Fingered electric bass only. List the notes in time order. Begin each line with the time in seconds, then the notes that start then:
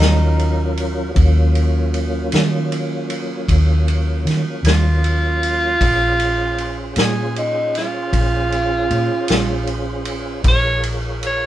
Already playing: D#2
1.16 D#2
2.33 D#3
3.48 D#2
4.25 D#3
4.63 D#2
5.81 A#1
6.97 A#2
8.13 A#1
8.90 A#2
9.30 A#1
10.44 A#1